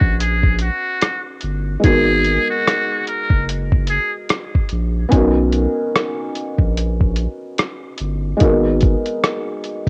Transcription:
Already playing: B3 C#4 D#4 F#4 B4
0.01 A#1, kick
0.20 G#4, closed hi-hat
0.43 kick
0.59 F#4, closed hi-hat
1.01 cross-stick, closed hi-hat
1.41 G1, closed hi-hat
1.80 G#3 B3 D#4
1.84 G#1 F#4 G#4 A#4, kick, closed hi-hat
2.25 closed hi-hat
2.50 F#4
2.68 cross-stick, closed hi-hat
3.07 A#4, closed hi-hat
3.30 F#1, kick
3.49 closed hi-hat
3.72 kick
3.87 G#4, closed hi-hat
4.29 cross-stick, closed hi-hat
4.55 kick
4.69 A#1, closed hi-hat
5.09 B3 C#4 D#4, kick, closed hi-hat
5.13 B1 F#4 A#4
5.52 closed hi-hat
5.96 cross-stick, closed hi-hat
6.35 closed hi-hat
6.58 A#1, kick
6.77 closed hi-hat
7.01 kick
7.16 closed hi-hat
7.58 cross-stick, closed hi-hat
7.98 G1, closed hi-hat
8.37 G#3 A#3 D#4, closed hi-hat
8.41 G#1 F#4 A#4, kick
8.45 B3
8.81 kick, closed hi-hat
9.06 closed hi-hat
9.24 cross-stick, closed hi-hat
9.64 closed hi-hat

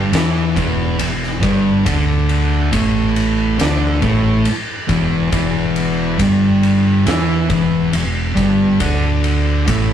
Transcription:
Already playing: G2 G3
0.12 E2 E3 E4, snare, ride
0.56 E1 E2 E3, kick, ride
0.99 E1 E2, ride
1.23 snare
1.43 G1 G2 G3, kick, ride
1.86 D2 D3 D4, kick, ride
2.29 ride
2.72 A1 A2 A3, kick, ride
3.16 ride
3.58 D2 D3 D4, snare, ride
4.00 A1 A2 A3, kick, ride
4.45 ride
4.88 E1 E2 E3, kick, ride
5.30 E1 E2 E3, kick, ride
5.76 ride
6.18 G1 G2 G3, kick, ride
6.63 ride
7.05 E2 E3 E4, snare, ride
7.49 E1 E2 E3, kick, ride
7.92 E1 E2, ride
8.35 G1 G2 G3, kick, ride
8.80 D2 D3 D4, kick, ride
9.24 ride
9.68 A1 A2 A3, kick, ride

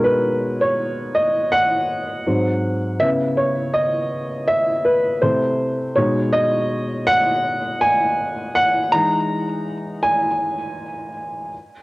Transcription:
Already playing: B2 G#3 D#4 A#4
0.04 B4
0.61 C#5
1.15 D#5
1.52 F#5
2.26 G#2 F#3 C4
3.00 C#3 B3 E4 E5
3.37 C#5
3.74 D#5
4.48 E5
4.85 B4
5.22 C3 A3 E4 C5
5.96 B2 G#3 D#4 C#5
6.33 D#5
7.07 F#5
7.81 G#5
8.55 F#5
8.92 E3 G#3 D#4 A#5
10.03 G#5

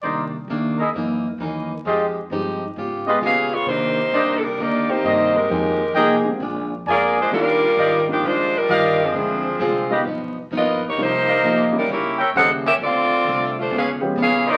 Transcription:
0.03 C2 C3 D#3 A#3 D4 D#4 A#4 C5 D5
0.48 D#2 C3 D#3 A#3 D4
0.78 E4 G#4 A#4 D#5
0.94 F#2 E3 A#3 D#4
1.38 D#2 F#2 E3 A#3 D#4
1.85 F2 F3 G#3 D#4 F4 G4 G#4 D#5
2.30 G2 F3 G#3 C4 D#4 G4
2.76 G#2 C#3 B3 F4 G4
3.06 G#3 B3 F4 G4 G#4 B4 D#5
3.21 A#2 C#3 B3 C#4 F4 G4 G#4 B4 F5
3.52 B3 F4 G#4 C#5
3.66 C3 D#3 A#3 D4 D#4 G4 C5
4.13 C2 C3 D#3 A#3 D4 D#4 A#4 C5 D5
4.38 G3 D#4 A4
4.43 D4 A#4
4.58 D2 C3 D#3 A#3 D4 D#4 G4 D5
4.89 D#3 A#3 C4 D#4 G4 C5 D5, muted upright bass stroke
5.04 G2 C3 D#3 A#3 D4 A#4 C5 D#5
5.35 G#3 D#4 G4 A#4
5.49 F2 D#3 F3 G#3 A#3 C4 D#4 G4 G#4
5.95 C2 F3 A#3 D#4 G#4 A#4 D#5 G5
6.25 D3 G#3 A#3 C4 G4
6.40 A#1 A#2 G#3 D4 F4
6.86 F2 A#2 G#3 A#3 D4 F4 G#4 A#4 D5 G#5
7.19 G#3 D4 F4 C5
7.31 D#2 D#3 G3 A#3 D4 F4 A#4
7.77 G#1 D#3 G3 D4 F4 G4 D5 D#5 F5
8.07 D#3 F3 G3 A#3 D4 F4 G4
8.23 A#1 D#3 G3 G#3 D4 F4 C5
8.56 G3 D4 F4 A#4
8.68 G1 D#3 G3 D4 F4 G4 D5 D#5 F5
9.03 F3 C4 D4 G#4
9.13 D2 D3 F3 G#3 C4 D4 E4 F4
9.59 C2 D3 G#3 C4 F4
9.90 G3 A#3 B3 D#4 F4 G4 B4 D#5 F5
10.05 B1 G2 F3 B3 D#4
10.51 A#1 G2 F3 B3 D#4
10.56 B3 F4 A#4 D#5
10.88 A#3 D#4 G4 C#5
10.96 C2 C3 F3 G3 A#3 D4 D#4 F4
11.02 A#3 D#4 G4 C5
11.27 A#4 D5 D#5 F5
11.42 D2 C3 F3 A#3 D#4
11.72 G3 A#3 C#4 D#4 E4
11.77 G3 D4 D#4 A#4
11.88 C#2 C#3 G3 A#3 E4 G4 C#5
12.18 A#4 C#5 E5 G5, muted upright bass stroke
12.33 D#2 C#3 G3 A#3 D#4 E4 A4 C5 F#5
12.65 C#4 G4 A#4 E5
12.78 D2 D3 A3 C4 F4
12.83 F4 A4 D5
13.24 C2 D3 A3 C4 F4
13.59 A3 D4 F4 C5
13.70 C#2 C#3 G3 B3 F4
13.76 C#4 G#4 B4 F5
14.00 F3 G#3 B3 C#4 G4, muted upright bass stroke
14.16 A#1 C#3 G3 B3 F4
14.20 C#4 G#4 B4 F5
14.47 D#4 A#4 C5 D5
14.51 A#3 G4

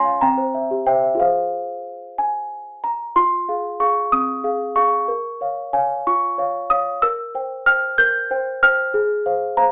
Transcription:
Already playing: C#4 F4 C#5 F5 G#5 C6
0.05 F5
0.21 C4 G5 A#5
0.38 C5
0.54 E5
0.71 G4
0.87 C5 E5 G5
1.04 E5
1.15 F4 G#4
1.20 C5 F5
2.18 G#5
2.84 A#5
3.16 F4 C6
3.49 G#4 F5
3.80 G#4 F5 C#6
4.12 C4 D#6
4.44 G#4 F5
4.76 G#4 F5 C#6
5.08 A#4
5.41 C#5 F5
5.73 C#5 F5 G#5
6.07 F4 C#6
6.38 C#5 F5
6.70 C#5 F5 D#6
7.02 A#4 E6
7.35 C5 G5
7.66 C5 G5 F6
7.98 A#4 G6
8.31 C5 G5
8.63 C5 G5 F6
8.94 G#4
9.26 C5 F5
9.57 C5 F5 A#5

